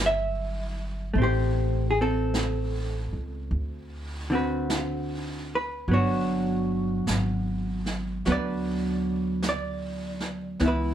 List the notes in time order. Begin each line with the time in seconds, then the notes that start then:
Already playing: G1 F#3 B4
0.06 E5
1.14 A1 A3, brush sweep
1.18 C4 G4
1.23 C5
1.91 G#4
2.01 C4 A4
2.34 brush sweep, snare, hi-hat pedal
3.13 C#2
3.51 D2, brush sweep
4.30 D3 C4 F#4
4.35 B4
4.70 brush sweep, snare, hi-hat pedal
5.55 B4
5.88 G1 F#3 B3, brush sweep
5.93 D4 F#4 C#5
7.07 G#1, brush sweep, snare, hi-hat pedal
7.86 snare
8.25 D2 F#3 B3 D4, brush sweep, snare
8.31 B4 D5
9.43 brush sweep, snare, hi-hat pedal
9.49 D5
10.20 snare
10.60 C#2 E3 B3, brush sweep, snare
10.66 E4 B4